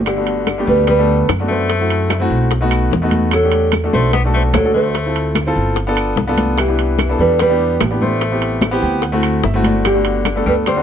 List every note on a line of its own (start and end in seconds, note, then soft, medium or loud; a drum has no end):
0.00 0.62 G1 medium
0.06 0.63 D3 medium
0.06 0.70 G4 medium
0.06 high bongo medium
0.06 high conga soft
0.06 high timbale medium
0.06 claves medium
0.17 0.45 A3 medium
0.17 0.45 B3 medium
0.17 0.46 D4 medium
0.17 0.46 F#4 medium
0.27 high conga soft
0.27 high timbale medium
0.47 high bongo medium
0.47 high conga medium
0.47 high timbale medium
0.47 claves medium
0.58 0.86 A3 medium
0.58 0.86 B3 medium
0.58 0.87 D4 medium
0.58 0.87 G4 medium
0.65 1.25 D2 medium
0.65 0.85 G3 medium
0.65 0.87 B4 medium
0.65 high conga soft
0.87 1.25 G3 medium
0.87 1.27 B4 medium
0.87 high bongo medium
0.87 high conga soft
0.87 high timbale medium
0.98 1.27 A3 medium
0.98 1.27 B3 medium
0.98 1.27 D4 medium
0.98 1.28 A4 medium
1.08 high conga soft
1.29 2.25 F#2 medium
1.29 high bongo medium
1.29 low bongo medium
1.29 high conga soft
1.29 high timbale medium
1.29 claves medium
1.40 1.68 A3 medium
1.40 1.68 B3 medium
1.40 1.68 D4 medium
1.40 1.69 F#4 medium
1.49 2.27 A3 medium
1.49 2.28 C5 medium
1.70 high bongo medium
1.70 high conga soft
1.70 high timbale medium
1.79 2.08 A3 medium
1.79 2.08 C4 medium
1.79 2.09 E4 medium
1.79 2.09 F#4 medium
1.90 high conga soft
1.90 high timbale medium
2.10 high bongo medium
2.10 high conga medium
2.10 high timbale medium
2.10 claves medium
2.20 2.49 A3 medium
2.20 2.49 C4 medium
2.20 2.49 E4 medium
2.20 2.50 F#4 loud
2.30 2.88 B1 medium
2.30 high bongo soft
2.51 high bongo medium
2.51 high conga soft
2.51 high timbale medium
2.61 2.90 A3 medium
2.61 2.90 B3 medium
2.61 2.90 D#4 medium
2.61 2.90 F#4 loud
2.71 high bongo soft
2.71 high conga soft
2.71 high timbale medium
2.71 claves medium
2.91 3.87 E2 medium
2.91 high bongo medium
2.91 low bongo medium
2.91 high conga soft
3.02 3.31 A3 medium
3.02 3.31 B3 medium
3.02 3.31 D#4 medium
3.02 3.32 F#4 medium
3.11 high bongo soft
3.11 high conga medium
3.11 high timbale medium
3.31 3.71 F#3 medium
3.31 3.71 A4 medium
3.31 high bongo medium
3.31 high conga soft
3.31 high timbale medium
3.31 claves medium
3.43 3.72 A3 medium
3.43 3.72 D4 medium
3.43 3.72 F#4 medium
3.43 3.73 G4 medium
3.52 high conga soft
3.52 high timbale medium
3.72 high bongo medium
3.72 high conga medium
3.72 high timbale medium
3.72 claves medium
3.84 4.12 A3 medium
3.84 4.12 D4 medium
3.84 4.13 F#4 medium
3.84 4.13 A4 medium
3.93 4.51 B1 medium
3.93 4.13 A3 medium
3.93 4.13 C5 medium
3.93 high conga soft
4.13 4.23 B3 medium
4.13 4.20 D5 loud
4.13 high bongo medium
4.13 high conga soft
4.13 high timbale medium
4.25 4.53 A3 medium
4.25 4.53 D4 medium
4.25 4.54 F#4 medium
4.25 4.54 A4 medium
4.34 4.43 A3 medium
4.34 4.41 C5 medium
4.34 high conga soft
4.53 5.50 D2 medium
4.53 4.73 F#3 medium
4.53 4.76 A4 medium
4.53 high bongo medium
4.53 low bongo medium
4.53 high conga soft
4.53 high timbale medium
4.53 low timbale medium
4.53 claves medium
4.64 4.93 A3 medium
4.64 4.94 D4 medium
4.64 4.94 F#4 medium
4.64 4.94 A4 medium
4.74 5.52 A3 medium
4.74 5.53 C5 medium
4.95 high bongo medium
4.95 high conga soft
4.95 high timbale medium
5.06 5.34 C4 medium
5.06 5.34 E4 medium
5.06 5.35 F4 medium
5.06 5.35 A4 medium
5.15 high conga soft
5.15 high timbale medium
5.35 high bongo medium
5.35 high conga medium
5.35 high timbale medium
5.35 claves medium
5.47 5.75 C4 medium
5.47 5.75 E4 medium
5.47 5.76 F4 medium
5.47 5.76 A4 loud
5.55 6.14 G1 medium
5.55 high bongo soft
5.76 high bongo medium
5.76 high conga soft
5.76 high timbale medium
5.87 6.16 B3 medium
5.87 6.16 D4 medium
5.87 6.16 F4 medium
5.87 6.17 A4 loud
5.97 high bongo soft
5.97 high conga soft
5.97 high timbale medium
5.97 claves medium
6.16 7.13 C2 medium
6.16 high bongo medium
6.16 low bongo medium
6.16 high conga soft
6.27 6.56 B3 medium
6.27 6.57 D4 medium
6.27 6.57 F4 medium
6.27 6.57 A4 loud
6.38 high bongo soft
6.38 high conga medium
6.38 high timbale medium
6.57 7.15 E3 medium
6.57 7.16 G4 medium
6.57 high bongo medium
6.57 high conga soft
6.57 high timbale loud
6.57 claves medium
6.68 6.97 B3 medium
6.68 6.97 D4 medium
6.68 6.98 E4 medium
6.68 6.98 G4 medium
6.78 high conga soft
6.78 high timbale medium
6.98 high bongo medium
6.98 high conga medium
6.98 high timbale medium
6.98 claves medium
7.09 7.38 B3 medium
7.09 7.38 D4 medium
7.09 7.39 E4 medium
7.09 7.39 A4 medium
7.19 7.76 E2 medium
7.19 7.39 G3 medium
7.19 7.39 B4 medium
7.19 high conga soft
7.39 7.79 G3 medium
7.39 7.79 B4 loud
7.39 high bongo medium
7.39 high conga soft
7.39 high timbale medium
7.50 7.79 B3 medium
7.50 7.79 D4 medium
7.50 7.79 E4 medium
7.50 7.79 G4 medium
7.60 high conga soft
7.80 8.77 A1 medium
7.80 high bongo medium
7.80 low bongo medium
7.80 high conga soft
7.80 high timbale medium
7.80 low timbale medium
7.80 claves medium
7.91 8.20 B3 medium
7.91 8.20 D4 medium
7.91 8.20 E4 medium
7.91 8.20 G4 medium
8.01 8.79 A3 medium
8.01 8.79 C5 medium
8.01 high conga medium
8.21 high bongo medium
8.21 high conga soft
8.21 high timbale medium
8.32 8.60 B3 medium
8.32 8.60 C4 medium
8.32 8.61 E4 medium
8.32 8.61 G4 medium
8.41 high conga soft
8.41 high timbale medium
8.61 high bongo medium
8.61 high conga medium
8.61 high timbale medium
8.61 claves medium
8.71 9.01 B3 loud
8.71 9.01 C4 medium
8.71 9.01 E4 medium
8.71 9.01 G4 loud
8.82 9.40 D2 medium
8.82 9.02 G5 medium
8.82 high bongo soft
9.02 9.41 F#5 medium
9.02 high bongo medium
9.02 high conga soft
9.02 high timbale medium
9.12 9.41 A3 loud
9.12 9.42 C4 medium
9.12 9.42 E4 medium
9.12 9.42 F#4 loud
9.22 high bongo soft
9.22 high conga soft
9.22 high timbale medium
9.22 claves medium
9.43 10.40 G1 medium
9.43 9.63 E5 medium
9.43 high bongo medium
9.43 low bongo medium
9.43 high conga soft
9.54 9.83 A3 medium
9.54 9.83 C4 medium
9.54 9.83 E4 medium
9.54 9.84 F#4 loud
9.64 9.84 D5 medium
9.64 high bongo soft
9.64 high conga medium
9.64 high timbale medium
9.84 10.42 D3 medium
9.84 10.48 G4 medium
9.84 high bongo medium
9.84 high conga soft
9.84 high timbale medium
9.84 claves medium
9.94 10.23 A3 medium
9.94 10.24 B3 medium
9.94 10.24 D4 medium
9.94 10.24 F#4 medium
10.05 high conga soft
10.05 high timbale medium
10.25 high bongo medium
10.25 high conga medium
10.25 high timbale medium
10.25 claves medium
10.35 10.64 A3 medium
10.35 10.65 B3 medium
10.35 10.65 D4 medium
10.35 10.65 A4 medium
10.46 10.83 D2 medium
10.46 10.55 G3 medium
10.46 10.53 B4 medium
10.46 high conga soft
10.66 10.83 G3 medium
10.66 10.83 C5 loud
10.66 high bongo medium
10.66 high conga soft
10.66 high timbale medium
10.76 10.83 A3 medium
10.76 10.83 B3 medium
10.76 10.83 D4 medium
10.76 10.83 F#4 medium